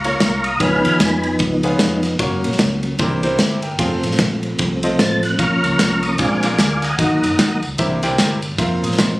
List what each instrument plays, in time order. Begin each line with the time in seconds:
Already playing: fingered electric bass C#2, tonewheel organ F5 A#5 C#6
0.04 upright piano A#3 C#4 F4 A#4 C#5, ride
0.20 fingered electric bass C2, snare, ride
0.44 tonewheel organ D#6, ride
0.60 fingered electric bass C#2, upright piano C#3 B3 C#4 F4 G#4 A#4, tonewheel organ F3 B3 D#4 G#5 B5 F6, kick, ride
0.66 upright piano B4
0.85 fingered electric bass D#2, ride
1.00 fingered electric bass F2, snare, ride
1.23 ride
1.39 fingered electric bass C#2, kick, ride
1.63 upright piano B3 C#4 F4 G#4 B4, ride
1.79 fingered electric bass F1, snare, ride
2.03 snare, ride
2.19 fingered electric bass F#1, tonewheel organ F#3 A#3 C#4, upright piano A#3 C#4 F#4 A#4 C#5, kick, ride
2.44 fingered electric bass A#1, ride
2.52 snare
2.59 fingered electric bass C#2, snare, ride
2.83 ride
2.98 fingered electric bass C2, upright piano C3 C4 E4 G4 A#4 C5, tonewheel organ E3 A#3 D4, kick, ride
3.23 upright piano C4 E4 G4 A#4 C5, ride
3.39 fingered electric bass G1, upright piano G4 E5, snare, ride
3.62 upright piano A#4 G5, ride
3.78 fingered electric bass F1, tonewheel organ F3 A3 C4, upright piano C4 F4 G#4 C5 F5, kick, ride
3.84 upright piano A4
4.03 fingered electric bass A1, ride
4.11 snare
4.19 fingered electric bass A#1, kick, snare, ride
4.43 ride
4.58 fingered electric bass C2, kick, ride
4.83 upright piano C4 F4 A4 C5 D#5, ride
4.99 fingered electric bass A1, tonewheel organ A6, snare, ride
5.23 tonewheel organ F#6, snare, ride
5.37 fingered electric bass A#1, upright piano A#2 C#4 F4 A#4 C#5 F5, tonewheel organ F3 A#3 C#4 A#5 C#6 F6, kick, ride, tambourine
5.64 fingered electric bass C#2, ride, tambourine
5.70 tonewheel organ A#5 C#6 F6
5.78 fingered electric bass C2, snare, clap, ride, tambourine
6.02 tonewheel organ D#6, ride, tambourine
6.18 fingered electric bass A#1, upright piano A#2 F4 G#4 A#4 D5 F5, tonewheel organ G#3 C4 D4 F5 G#5 D6, kick, ride, tambourine
6.43 upright piano F4 G#4 A#4 D5 F5, clap, ride, tambourine
6.50 tonewheel organ F5 G#5 D6
6.58 fingered electric bass D2, snare, clap, ride, tambourine
6.82 tonewheel organ F#5 A#5 D#6, snare, ride, tambourine
6.98 fingered electric bass D#2, upright piano D#3 D#4 F#4 A#4 D#5 F5, tonewheel organ F#3 A#3 D#4, kick, ride, tambourine
7.04 upright piano F#5
7.23 fingered electric bass F#2, ride, tambourine
7.38 fingered electric bass D#2, snare, clap, ride, tambourine
7.62 fingered electric bass C#2, ride, tambourine
7.78 fingered electric bass C2, upright piano C3 E4 G4 A#4 C5 E5, tonewheel organ E3 A#3 D4, kick, ride, tambourine
8.03 upright piano E4 G4 A#4 C5 G5, clap, ride, tambourine
8.18 fingered electric bass G1, snare, clap, ride, tambourine
8.42 ride, tambourine
8.58 fingered electric bass F1, tonewheel organ F3 A#3 C4, upright piano C4 F4 A#4 C5 E5, kick, ride, tambourine
8.63 upright piano F5
8.82 fingered electric bass A1, upright piano D#6, ride, tambourine
8.91 snare
8.98 fingered electric bass A#1, upright piano D#5 C6, snare, clap, ride, tambourine